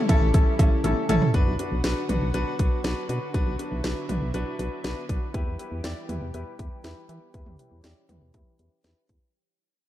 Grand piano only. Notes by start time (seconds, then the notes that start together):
0.09 C#4 E4 A4
0.34 C#4 E4 A4
0.59 C#4 E4 A4
0.84 C#4 E4 A4
1.09 C#4 E4 A4
1.34 D4 F#4 B4
1.59 D4 F#4 B4
1.84 D4 F#4 B4
2.09 D4 F#4 B4
2.34 D4 F#4 B4
2.59 D4 F#4 B4
2.84 D4 F#4 B4
3.09 D4 F#4 B4
3.34 D4 F#4 B4
3.59 D4 F#4 B4
3.84 D4 F#4 B4
4.09 D4 F#4 B4
4.34 D4 F#4 B4
4.59 D4 F#4 B4
4.84 D4 F#4 B4
5.09 D4 F#4 B4
5.34 E4 G4 B4
5.59 E4 G4 B4
5.84 E4 G4 D5
6.09 E4 G4 B4
6.34 E4 G4 B4
6.59 E4 G4 B4
6.84 E4 G4 B4
7.09 E4 G4 B4
7.34 E4 G4 B4
7.59 E4 G4 B4
7.84 E4 G4 D5
8.09 E4 G4 B4
8.34 E4 G4 B4
8.59 E4 G4 B4
8.84 E4 G4 B4
9.09 E4 G4